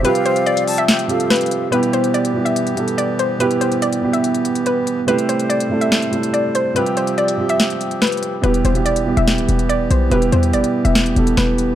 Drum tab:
HH |x-x-x-x-x-x-o-x-x-x-x-x-xxxxx---|x-x-x-x-x-x---x-x-x-x-x-x---x---|x-x-x-x-x-x---x-x-x-x-x-x---x---|x-x-x-x-x-x---x-x-x-x-x-x---x---|
SD |----------------o-------o-------|--------------------------------|--------------------------------|----------------o---------------|

HH |x-x-x-x-x-x---x-x-x-x-x-xxxxx---|x-x-x-x-x-x---x-x-x-x-x-x---x---|x-x-x-x-x-x---x-x-x-x-x-x---x---|
SD |----------------o-------o-------|----------------o---------------|----------------o-------o-------|